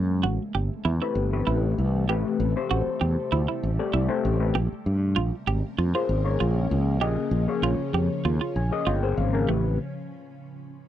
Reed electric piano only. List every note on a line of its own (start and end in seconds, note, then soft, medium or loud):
1.02 1.30 A3 medium
1.02 1.30 C4 medium
1.02 1.30 G4 medium
1.02 1.30 B4 medium
1.33 2.03 A3 medium
1.33 2.03 C4 medium
1.33 2.04 G4 medium
1.33 2.04 B4 medium
2.09 2.52 A3 medium
2.09 2.52 C4 medium
2.09 2.52 G4 medium
2.09 2.52 B4 medium
2.56 3.70 A3 medium
2.56 3.69 C4 medium
2.56 3.70 G4 medium
2.56 3.70 C5 loud
3.79 4.07 A3 medium
3.79 4.08 C4 medium
3.79 4.08 G4 medium
3.79 4.08 D5 loud
4.09 4.38 A3 medium
4.09 4.38 C4 medium
4.09 4.38 G4 medium
4.09 4.38 C5 medium
4.40 4.55 A3 medium
4.40 4.55 C4 medium
4.40 4.55 G4 medium
4.40 4.55 B4 medium
5.94 6.23 A#3 medium
5.94 6.23 C#4 medium
5.94 6.23 G#4 medium
5.94 6.23 C5 medium
6.25 6.96 A#3 medium
6.25 6.96 C#4 medium
6.25 6.96 G#4 medium
6.25 6.96 C#5 medium
7.01 7.45 A#3 medium
7.01 7.45 C#4 medium
7.01 7.45 G#4 medium
7.01 7.45 D#5 loud
7.48 8.62 A#3 medium
7.48 8.62 C#4 medium
7.48 8.62 G#4 medium
7.48 8.62 C#5 medium
8.56 8.85 G#5 medium
8.71 9.00 A#3 medium
8.71 9.00 C#4 medium
8.71 9.00 G#4 medium
8.71 9.01 D#5 loud
8.87 9.16 G5 medium
9.02 9.31 A#3 medium
9.02 9.31 C#4 medium
9.02 9.31 G#4 medium
9.02 9.31 C5 medium
9.17 9.46 F5 medium
9.33 9.48 A#3 medium
9.33 9.48 C#4 medium
9.33 9.48 G#4 medium
9.33 9.49 A#4 medium
9.49 9.77 A3 medium
9.49 9.78 C4 medium
9.49 9.77 G4 medium
9.49 9.78 B4 medium